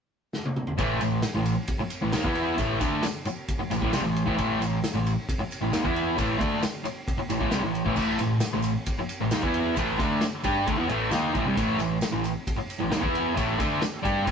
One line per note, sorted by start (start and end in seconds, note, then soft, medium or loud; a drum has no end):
0.33 snare medium
0.45 high tom medium
0.56 mid tom medium
0.67 floor tom medium
0.78 1.00 A1 loud
0.78 0.99 A2 medium
0.78 1.00 E3 medium
0.78 1.01 A3 loud
0.78 kick loud
0.78 ride loud
0.78 tambourine medium
1.01 1.22 A1 medium
1.01 1.19 A2 medium
1.01 1.20 E3 medium
1.01 ride medium
1.01 tambourine medium
1.22 snare loud
1.22 ride loud
1.22 tambourine medium
1.34 1.56 A1 medium
1.34 1.53 A2 medium
1.34 1.53 E3 medium
1.45 ride medium
1.45 tambourine medium
1.68 kick loud
1.68 ride loud
1.68 tambourine soft
1.79 muted distorted electric guitar stroke medium
1.79 muted picked electric bass stroke soft
1.90 ride medium
1.90 tambourine medium
2.02 2.13 A1 medium
2.02 2.13 A2 medium
2.02 2.14 E3 medium
2.12 2.23 D#2 medium
2.12 2.24 D#3 loud
2.12 2.25 A#3 loud
2.12 snare loud
2.12 ride loud
2.12 tambourine loud
2.24 2.56 E2 medium
2.24 2.57 E3 medium
2.24 2.58 B3 medium
2.24 2.59 E4 loud
2.24 kick loud
2.35 ride medium
2.35 tambourine soft
2.58 2.79 A1 medium
2.58 2.80 A2 loud
2.58 2.81 E3 loud
2.58 2.80 A3 loud
2.58 kick loud
2.58 ride medium
2.58 tambourine medium
2.80 3.02 D2 medium
2.80 3.02 D3 medium
2.80 3.03 A3 medium
2.80 3.04 D4 loud
2.80 kick loud
2.80 ride medium
2.80 tambourine medium
3.03 muted distorted electric guitar stroke medium
3.03 muted picked electric bass stroke soft
3.03 snare loud
3.03 ride loud
3.03 tambourine loud
3.25 muted picked electric bass stroke soft
3.25 muted distorted electric guitar stroke medium
3.25 ride medium
3.25 tambourine medium
3.48 kick loud
3.48 ride medium
3.48 tambourine soft
3.59 muted picked electric bass stroke soft
3.59 muted distorted electric guitar stroke medium
3.70 3.81 A1 medium
3.70 3.80 A2 medium
3.70 3.82 E3 medium
3.70 ride medium
3.70 tambourine medium
3.82 3.92 A1 loud
3.82 3.92 A2 medium
3.82 3.93 E3 medium
3.82 kick loud
3.92 4.03 C2 medium
3.92 4.04 C3 loud
3.92 4.03 G3 loud
3.92 snare loud
3.92 ride loud
3.92 tambourine medium
4.03 4.25 A1 medium
4.03 4.22 A2 medium
4.03 4.22 E3 medium
4.16 ride medium
4.16 tambourine soft
4.26 4.38 A1 loud
4.26 4.35 A2 medium
4.26 4.37 E3 loud
4.26 kick loud
4.36 4.59 A1 loud
4.36 4.58 A2 medium
4.36 4.59 E3 medium
4.36 4.60 A3 loud
4.36 kick loud
4.36 ride medium
4.36 tambourine medium
4.59 4.81 A1 medium
4.59 4.78 A2 medium
4.59 4.78 E3 medium
4.59 ride medium
4.59 tambourine medium
4.84 snare loud
4.84 ride loud
4.84 tambourine medium
4.94 5.15 A1 medium
4.94 5.12 A2 medium
4.94 5.12 E3 medium
5.06 ride medium
5.06 tambourine medium
5.29 kick loud
5.29 ride loud
5.29 tambourine soft
5.38 muted picked electric bass stroke soft
5.38 muted distorted electric guitar stroke medium
5.51 ride medium
5.51 tambourine medium
5.61 5.72 A1 medium
5.61 5.72 A2 medium
5.61 5.73 E3 medium
5.72 5.83 D#2 medium
5.72 5.83 D#3 loud
5.72 5.84 A#3 loud
5.72 snare loud
5.72 ride loud
5.72 tambourine medium
5.84 6.16 E2 medium
5.84 6.17 E3 medium
5.84 6.17 B3 loud
5.84 6.18 E4 loud
5.84 kick loud
5.96 ride medium
5.96 tambourine soft
6.17 6.39 A1 medium
6.17 6.38 A2 loud
6.17 6.39 E3 loud
6.17 6.38 A3 loud
6.17 kick loud
6.17 ride loud
6.17 tambourine medium
6.39 6.61 D2 loud
6.39 6.61 D3 medium
6.39 6.62 A3 loud
6.39 6.62 D4 medium
6.39 kick loud
6.39 ride medium
6.61 muted distorted electric guitar stroke medium
6.61 muted picked electric bass stroke soft
6.61 snare loud
6.61 ride loud
6.61 tambourine loud
6.84 muted distorted electric guitar stroke medium
6.84 muted picked electric bass stroke soft
6.84 ride medium
6.84 tambourine medium
7.08 kick loud
7.08 ride loud
7.18 muted distorted electric guitar stroke medium
7.18 muted picked electric bass stroke soft
7.29 7.40 A1 medium
7.29 7.39 A2 medium
7.29 7.40 E3 medium
7.29 ride medium
7.29 tambourine medium
7.40 7.50 A1 medium
7.40 7.51 A2 medium
7.40 7.52 E3 medium
7.40 kick loud
7.51 7.62 C2 medium
7.51 7.63 C3 loud
7.51 7.63 G3 loud
7.51 snare loud
7.51 ride loud
7.51 tambourine medium
7.63 7.85 A1 medium
7.63 7.82 A2 medium
7.63 7.82 E3 medium
7.74 ride medium
7.74 tambourine soft
7.85 7.96 A1 medium
7.85 7.95 A2 medium
7.85 7.96 E3 medium
7.85 kick loud
7.96 8.18 A1 loud
7.96 8.18 A2 loud
7.96 8.18 E3 medium
7.96 8.19 A3 loud
7.96 kick loud
7.96 crash loud
7.96 tambourine medium
8.18 8.40 A1 medium
8.18 8.38 A2 medium
8.18 8.38 E3 medium
8.18 ride medium
8.18 tambourine medium
8.40 snare loud
8.40 ride loud
8.40 tambourine loud
8.53 8.75 A1 medium
8.53 8.71 A2 medium
8.53 8.71 E3 medium
8.62 ride medium
8.62 tambourine medium
8.86 kick loud
8.86 ride loud
8.86 tambourine soft
8.99 muted distorted electric guitar stroke medium
8.99 muted picked electric bass stroke soft
9.09 ride medium
9.09 tambourine medium
9.20 9.31 A1 medium
9.20 9.31 A2 medium
9.20 9.32 E3 medium
9.31 9.42 D#2 medium
9.31 9.42 D#3 loud
9.31 9.43 A#3 loud
9.31 snare loud
9.31 ride loud
9.31 tambourine loud
9.43 9.74 E2 medium
9.43 9.76 E3 medium
9.43 9.77 B3 loud
9.43 9.77 E4 loud
9.43 kick loud
9.54 ride medium
9.54 tambourine soft
9.76 9.98 A1 loud
9.76 9.98 A2 medium
9.76 9.99 E3 loud
9.76 9.99 A3 loud
9.76 kick loud
9.76 ride loud
9.76 tambourine medium
9.99 10.20 D2 loud
9.99 10.21 D3 medium
9.99 10.22 A3 medium
9.99 10.22 D4 loud
9.99 kick loud
9.99 ride medium
9.99 tambourine medium
10.21 muted distorted electric guitar stroke medium
10.21 muted picked electric bass stroke soft
10.21 snare loud
10.21 ride loud
10.21 tambourine loud
10.43 10.66 G2 medium
10.43 10.66 G3 loud
10.43 10.66 D4 loud
10.43 10.67 G4 loud
10.43 kick loud
10.43 ride medium
10.43 tambourine medium
10.66 10.78 D2 medium
10.66 10.77 D3 medium
10.66 10.78 A3 loud
10.66 kick loud
10.66 ride loud
10.66 tambourine soft
10.78 10.88 E2 loud
10.78 10.88 E3 loud
10.78 10.89 B3 loud
10.88 11.10 A1 loud
10.88 11.10 A2 medium
10.88 11.11 E3 loud
10.88 11.12 A3 loud
10.88 ride medium
11.10 11.32 D#2 loud
11.10 11.33 D#3 loud
11.10 11.34 A#3 loud
11.10 11.34 D#4 loud
11.10 snare loud
11.10 ride loud
11.10 tambourine medium
11.33 11.45 A1 loud
11.33 11.45 A2 loud
11.33 11.45 E3 loud
11.33 kick loud
11.33 ride medium
11.33 tambourine soft
11.46 11.56 C2 medium
11.46 11.56 C3 medium
11.46 11.57 G3 loud
11.57 11.78 A1 loud
11.57 11.77 A2 loud
11.57 11.78 E3 loud
11.57 11.79 A3 loud
11.57 kick loud
11.57 ride loud
11.57 tambourine medium
11.78 12.00 A1 medium
11.78 11.97 A2 medium
11.78 11.97 E3 medium
11.78 ride medium
11.78 tambourine medium
12.01 snare loud
12.01 ride loud
12.01 tambourine loud
12.12 12.34 A1 medium
12.12 12.30 A2 medium
12.12 12.31 E3 medium
12.24 ride medium
12.24 tambourine medium
12.47 kick loud
12.47 ride loud
12.47 tambourine soft
12.57 muted distorted electric guitar stroke medium
12.57 muted picked electric bass stroke soft
12.70 ride medium
12.70 tambourine medium
12.80 12.91 A1 medium
12.80 12.90 A2 medium
12.80 12.92 E3 medium
12.91 13.02 D#2 loud
12.91 13.01 D#3 medium
12.91 13.02 A#3 loud
12.91 snare loud
12.91 ride loud
12.91 tambourine medium
13.01 13.35 E2 medium
13.01 13.34 E3 medium
13.01 13.35 B3 loud
13.01 13.36 E4 loud
13.01 kick loud
13.15 ride medium
13.15 tambourine soft
13.35 13.58 A1 loud
13.35 13.58 A2 medium
13.35 13.58 E3 medium
13.35 13.58 A3 loud
13.35 kick loud
13.35 ride medium
13.35 tambourine medium
13.58 13.80 D2 medium
13.58 13.81 D3 medium
13.58 13.81 A3 medium
13.58 13.82 D4 loud
13.58 kick loud
13.58 ride medium
13.58 tambourine medium
13.81 muted distorted electric guitar stroke medium
13.81 muted picked electric bass stroke soft
13.81 snare loud
13.81 ride loud
13.81 tambourine medium
14.02 14.25 G2 medium
14.02 14.25 G3 medium
14.02 14.26 D4 loud
14.02 14.26 G4 loud
14.02 kick loud
14.02 ride medium
14.02 tambourine medium
14.25 14.31 D2 loud
14.25 14.31 D3 medium
14.25 14.31 A3 medium
14.25 kick loud
14.25 ride loud